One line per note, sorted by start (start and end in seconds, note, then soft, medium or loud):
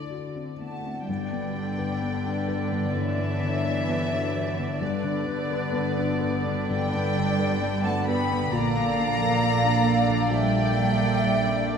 0.00 1.04 D2 soft
0.00 0.56 D3 soft
0.00 1.11 D3 soft
0.00 1.12 A3 soft
0.00 0.82 D4 soft
0.00 0.10 E4 soft
0.00 0.11 F#4 soft
0.00 1.11 A4 soft
0.00 0.60 D5 soft
0.10 0.59 F#4 soft
0.10 0.50 F#4 soft
0.35 0.75 C4 soft
0.35 0.77 E4 soft
0.59 1.04 A3 soft
0.59 0.85 B3 soft
0.59 1.12 F#4 soft
0.59 1.05 F#5 soft
0.59 1.05 A5 soft
0.84 1.08 C4 soft
0.84 4.74 D4 soft
1.07 4.77 G1 soft
1.07 2.93 G2 soft
1.07 2.90 G2 soft
1.07 4.77 D3 soft
1.07 2.90 G3 medium
1.07 4.77 B3 soft
1.07 4.77 D4 soft
1.07 4.77 B4 soft
1.07 2.94 D5 medium
1.07 4.77 D5 soft
1.07 2.94 G5 medium
1.31 1.77 D3 soft
1.31 1.69 B3 soft
1.54 3.17 B3 soft
1.54 1.93 D4 soft
1.78 2.70 D3 soft
1.78 2.16 B4 soft
2.01 2.39 B3 soft
2.01 2.47 G4 soft
2.25 2.62 D4 soft
2.48 3.88 G4 soft
2.48 2.85 B4 soft
2.71 3.40 D3 soft
2.71 3.08 B3 soft
2.93 4.80 G2 soft
2.93 3.31 D3 soft
2.93 4.81 E3 medium
2.93 4.77 C#5 medium
2.93 4.81 E5 medium
3.17 3.55 B3 soft
3.17 3.64 B3 soft
3.41 4.57 D3 soft
3.41 3.79 D4 soft
3.64 5.03 B3 soft
3.64 4.03 B4 soft
3.88 4.26 B3 soft
3.88 4.34 G4 soft
4.12 4.49 D4 soft
4.12 4.52 F#4 soft
4.36 5.72 G4 soft
4.36 4.72 B4 soft
4.58 5.25 D3 soft
4.58 4.95 B3 soft
4.80 8.48 G1 medium
4.80 6.65 G2 medium
4.80 6.68 G2 medium
4.80 6.69 D3 medium
4.80 8.48 D3 medium
4.80 8.21 B3 medium
4.80 8.48 B3 medium
4.80 8.48 D4 medium
4.80 8.48 B4 medium
4.80 6.39 B4 medium
4.80 6.69 D5 medium
4.80 8.21 D5 medium
5.04 5.40 D3 soft
5.04 5.48 B3 soft
5.26 6.45 D3 soft
5.26 5.64 D4 soft
5.50 6.92 B3 soft
5.50 5.87 B4 medium
5.72 6.11 B3 soft
5.72 6.20 G4 soft
5.97 6.36 D4 soft
5.97 6.39 F#4 soft
6.21 7.60 G4 soft
6.21 6.60 B4 medium
6.45 7.15 D3 medium
6.45 6.83 B3 soft
6.69 8.55 G2 medium
6.69 7.07 D3 medium
6.69 7.82 G3 medium
6.69 7.84 D5 medium
6.69 7.82 G5 loud
6.93 7.37 B3 medium
6.93 7.30 B3 soft
7.16 8.28 D3 medium
7.16 7.52 D4 soft
7.38 8.56 B3 medium
7.38 7.75 B4 medium
7.61 7.98 B3 soft
7.61 8.05 G4 soft
7.83 8.06 A3 medium
7.83 8.21 D4 soft
7.83 8.22 F#4 soft
7.83 8.06 F#5 medium
7.83 8.07 A5 medium
8.06 8.51 B3 medium
8.06 8.56 G4 medium
8.06 8.44 B4 soft
8.06 8.52 G5 medium
8.06 8.51 B5 medium
8.29 8.56 D3 medium
8.29 8.53 B3 soft
8.51 11.78 A#1 medium
8.51 10.30 A#2 medium
8.51 10.28 A#2 medium
8.51 11.78 D3 medium
8.51 11.78 A#3 medium
8.51 10.31 A#3 medium
8.51 11.78 A#3 medium
8.51 11.78 D4 medium
8.51 11.78 D5 medium
8.51 10.27 F5 loud
8.51 10.31 A#5 loud
8.75 9.18 F3 medium
8.75 9.12 A#3 soft
8.98 9.34 D4 soft
9.20 10.07 F3 soft
9.20 9.56 A#4 soft
9.42 9.78 A#3 soft
9.42 9.85 D4 medium
9.64 10.02 C4 soft
9.64 9.99 D4 soft
9.86 11.21 D4 soft
9.86 10.22 A#4 soft
10.08 10.75 F3 soft
10.08 10.44 A#3 soft
10.30 11.78 A#2 medium
10.30 10.68 F3 soft
10.30 11.78 G3 medium
10.30 11.78 E5 medium
10.30 11.78 G5 loud
10.54 10.91 A#3 soft
10.77 11.78 F3 soft
10.77 11.14 D4 soft
11.00 11.37 A#4 soft
11.23 11.61 A#3 soft
11.23 11.68 D4 soft
11.46 11.78 C4 soft
11.46 11.78 D4 soft
11.69 11.78 D4 soft
11.69 11.78 A#4 soft